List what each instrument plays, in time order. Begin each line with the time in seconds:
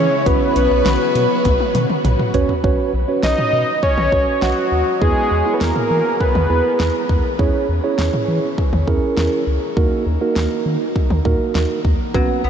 Already playing: string machine C#3 E3 G#3 E4, tine electric piano C#4 E4 G#4 C#5, analog synth lead C#5
0.26 analog synth bass B1, string machine F#3 B3 F#4, tine electric piano C#4 F#4 B4 C#5, analog synth lead B4, kick, closed hi-hat
0.56 analog synth bass B1, closed hi-hat
0.71 analog synth bass B1
0.86 analog synth bass B1, snare, closed hi-hat
1.15 analog synth bass B2, closed hi-hat
1.45 analog synth bass B1, kick, closed hi-hat, high tom
1.60 high tom
1.75 analog synth bass B2, closed hi-hat, mid tom
1.90 mid tom
2.05 analog synth bass B1, closed hi-hat, mid tom
2.19 mid tom
2.34 analog synth bass B1, tine electric piano C#4 F#4 B4 C#5, closed hi-hat, floor tom
2.49 floor tom
2.64 analog synth bass B1, tine electric piano C#4 F#4 B4 C#5, kick
2.94 analog synth bass B1
3.08 tine electric piano C#4 F#4 B4 C#5
3.23 analog synth bass B1, analog synth lead D#5, snare
3.38 mid tom
3.53 analog synth bass B2
3.83 analog synth lead C#5, kick
3.98 analog synth bass B1, mid tom
4.12 analog synth bass B1, tine electric piano C#4 F#4 B4 C#5, kick
4.42 analog synth bass B1, analog synth lead F#4, snare
4.72 analog synth bass D#2
5.01 analog synth bass E2, tine electric piano B3 E4 G#4 B4, analog synth lead G#4, kick
5.31 analog synth bass E2
5.46 tine electric piano B3 E4 G#4
5.54 analog synth lead B4
5.61 analog synth bass E2, analog synth lead A#4, snare
5.76 mid tom
5.91 analog synth bass E3
6.20 analog synth lead B4, kick
6.35 analog synth bass E2, mid tom
6.50 analog synth bass E2, tine electric piano B3 E4 G#4 B4
6.80 analog synth bass E2, snare
7.09 analog synth bass E2, kick
7.39 analog synth bass E2, tine electric piano C#4 E4 G#4 C#5, kick
7.69 analog synth bass E2
7.84 tine electric piano C#4 E4 G#4 C#5
7.99 analog synth bass E2, snare
8.14 mid tom
8.28 analog synth bass E3
8.58 kick
8.73 analog synth bass E2, mid tom
8.87 analog synth bass E2, tine electric piano C#4 E4 G#4 A#4, kick
9.17 analog synth bass E2, snare
9.47 analog synth bass C#2
9.77 analog synth bass D#2, tine electric piano A#3 D#4 F#4 A#4, kick
10.06 analog synth bass D#2
10.21 tine electric piano A#3 D#4 F#4 A#4
10.36 analog synth bass D#2, snare
10.66 analog synth bass D#3
10.96 kick
11.10 analog synth bass D#2, mid tom
11.25 analog synth bass D#2, tine electric piano A#3 D#4 F#4 A#4, kick, mid tom
11.55 analog synth bass D#2, snare
11.85 analog synth bass D#2, kick
12.14 analog synth bass B1, guzheng F#3, tine electric piano B3 C#4 F#4 B4, kick
12.44 analog synth bass B1, guzheng B3